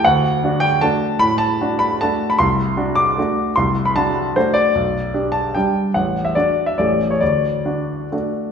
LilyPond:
\new Staff \with { instrumentName = "Grand piano" } { \time 3/4 \key d \major \tempo 4 = 150 << { fis''4. g''8 a''4 | b''8 a''4 b''8 a''8. b''16 | c'''4. d'''4. | c'''8. b''16 a''4 c''8 d''8~ |
d''4. a''8 g''4 | fis''8. e''16 d''8. e''16 d''8. cis''16 | d''2. | } \\ { d,4 <d' fis'>4 <a d' fis'>4 | a,4 <d' fis'>4 <a d' fis'>4 | c,4 <d' fis'>4 <a d' fis'>4 | c,4 <d' fis'>4 <a d' fis'>4 |
b,,4 <d' g'>4 <g d' g'>4 | a,,4 <d' fis'>4 <a,, a cis' g'>4 | d,4 <d' fis'>4 <a d' fis'>4 | } >> }